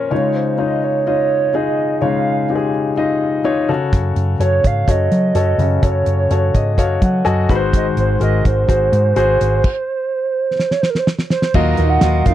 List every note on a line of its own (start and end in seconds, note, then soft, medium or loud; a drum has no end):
0.00 0.13 A#2 soft
0.00 0.13 F3 soft
0.00 0.14 C#4 medium
0.00 0.14 A#4 medium
0.00 0.14 C5 medium
0.00 0.11 C#5 medium
0.11 0.79 C#3 soft
0.11 0.79 G#3 soft
0.11 0.54 D#4 medium
0.11 0.54 F4 medium
0.11 0.54 C#5 medium
0.11 0.37 C#5 medium
0.35 0.61 C5 medium
0.58 1.01 D#4 medium
0.58 1.02 F4 medium
0.58 1.02 C#5 medium
0.58 0.85 D#5 medium
0.84 1.07 C#5 medium
1.07 1.50 D#4 medium
1.07 1.50 F4 medium
1.07 1.57 C#5 medium
1.07 1.50 D#5 medium
1.54 1.97 D#4 medium
1.54 1.97 F4 medium
1.54 1.97 G#4 medium
1.54 2.03 D#5 medium
2.02 2.69 C#3 medium
2.02 2.69 G#3 soft
2.02 2.45 D#4 medium
2.02 2.45 F4 medium
2.02 2.45 C#5 medium
2.02 2.70 F5 loud
2.49 2.92 D#4 medium
2.49 2.92 F4 soft
2.49 2.56 G4 medium
2.55 2.95 G#4 medium
2.97 3.40 D#4 medium
2.97 3.40 F4 medium
2.97 3.40 D#5 medium
3.44 3.69 D#4 medium
3.44 3.69 F4 medium
3.44 3.67 C#5 medium
3.69 4.36 C#3 medium
3.69 4.33 F#4 medium
3.69 4.33 A4 medium
3.69 4.33 C#5 medium
3.93 4.12 F#2 medium
3.93 kick medium
3.93 closed hi-hat medium
4.16 4.36 F#2 medium
4.16 closed hi-hat soft
4.39 4.59 F#2 medium
4.39 4.83 F#4 medium
4.39 4.83 A4 soft
4.39 4.83 C#5 medium
4.39 4.68 C#5 medium
4.39 closed hi-hat medium
4.64 4.84 G#2 medium
4.64 4.92 F5 medium
4.64 kick medium
4.64 closed hi-hat medium
4.88 5.07 F#2 medium
4.88 5.31 F#4 medium
4.88 5.31 A4 soft
4.88 5.31 C#5 medium
4.88 5.84 D#5 medium
4.88 kick medium
4.88 closed hi-hat medium
5.11 5.31 F#3 medium
5.11 closed hi-hat medium
5.35 5.55 F#2 medium
5.35 5.78 F#4 medium
5.35 5.78 A4 medium
5.35 5.78 C#5 medium
5.35 closed hi-hat medium
5.58 5.78 F#2 medium
5.58 6.27 C#3 medium
5.58 closed hi-hat medium
5.82 6.03 F#2 medium
5.82 6.26 F#4 medium
5.82 6.26 A4 medium
5.82 6.26 C#5 medium
5.82 6.75 C#5 medium
5.82 kick medium
5.82 closed hi-hat medium
6.06 6.26 F#2 medium
6.06 closed hi-hat medium
6.31 6.50 F#2 medium
6.31 6.73 F#4 medium
6.31 6.74 A4 soft
6.31 6.74 C#5 medium
6.31 closed hi-hat medium
6.54 6.78 G#2 medium
6.54 6.77 D#5 medium
6.54 kick medium
6.54 closed hi-hat medium
6.78 6.98 F#2 medium
6.78 7.21 F#4 medium
6.78 7.21 A4 medium
6.78 7.21 C#5 medium
6.78 7.00 F5 medium
6.78 kick medium
6.78 closed hi-hat medium
7.02 7.21 F#3 medium
7.02 7.24 F#5 medium
7.02 kick medium
7.02 closed hi-hat medium
7.25 7.45 F#2 medium
7.25 7.48 F#4 medium
7.25 7.49 A4 medium
7.25 7.49 D#5 medium
7.25 7.70 G#5 medium
7.25 closed hi-hat medium
7.49 7.88 G#1 medium
7.49 8.17 G#2 medium
7.49 8.17 D#3 medium
7.49 8.14 F#4 medium
7.49 8.14 G#4 medium
7.49 7.56 B4 medium
7.49 kick medium
7.49 closed hi-hat soft
7.55 8.17 C5 medium
7.73 7.86 D#5 loud
7.73 kick medium
7.73 closed hi-hat medium
7.97 8.17 G#1 medium
7.97 8.21 C5 medium
7.97 closed hi-hat medium
8.20 8.41 G#1 medium
8.20 8.63 F#4 medium
8.20 8.64 G#4 medium
8.20 8.64 A#4 medium
8.20 8.44 D#5 loud
8.20 closed hi-hat medium
8.45 8.65 G#1 medium
8.45 10.73 C5 medium
8.45 kick medium
8.45 closed hi-hat medium
8.68 8.88 G#1 medium
8.68 9.11 F#4 medium
8.68 9.11 G#4 medium
8.68 9.11 C5 medium
8.68 kick medium
8.68 closed hi-hat medium
8.92 9.12 G#2 medium
8.92 closed hi-hat medium
9.16 9.36 G#1 medium
9.16 9.59 F#4 medium
9.16 9.59 G#4 medium
9.16 9.59 C5 medium
9.16 closed hi-hat medium
9.41 9.60 G#1 medium
9.41 closed hi-hat medium
9.64 kick medium
9.64 crash medium
10.59 snare soft
10.71 10.83 C#5 medium
10.71 snare soft
10.82 10.91 C5 medium
10.82 snare medium
10.90 11.00 A#4 medium
10.95 11.07 C5 medium
10.95 snare medium
11.07 snare medium
11.19 snare medium
11.30 11.56 C5 medium
11.30 snare medium
11.42 snare medium
11.54 11.74 D#2 medium
11.54 12.22 A#2 medium
11.54 11.78 D#3 medium
11.54 11.78 F#3 medium
11.54 11.79 D#4 medium
11.54 11.97 F4 medium
11.54 11.78 F4 medium
11.54 11.97 F#4 medium
11.54 11.77 A#4 medium
11.54 11.91 D#5 loud
11.54 11.97 D#5 medium
11.54 kick loud
11.54 crash medium
11.77 11.98 D#2 medium
11.77 12.02 D#4 soft
11.77 12.03 F4 medium
11.77 12.02 A#4 medium
11.77 closed hi-hat medium
11.90 12.27 F#5 loud
12.01 12.21 D#2 medium
12.01 12.26 F#3 medium
12.01 12.26 D#4 medium
12.01 12.24 F4 medium
12.01 12.26 F4 medium
12.01 12.24 F#4 medium
12.01 12.24 A#4 medium
12.01 12.24 D#5 medium
12.01 snare loud
12.01 closed hi-hat medium
12.25 12.34 F2 medium
12.25 12.34 D#4 soft
12.25 12.34 F4 medium
12.25 12.34 F#4 soft
12.25 12.34 A#4 medium
12.25 12.34 F5 loud
12.25 kick medium
12.25 closed hi-hat medium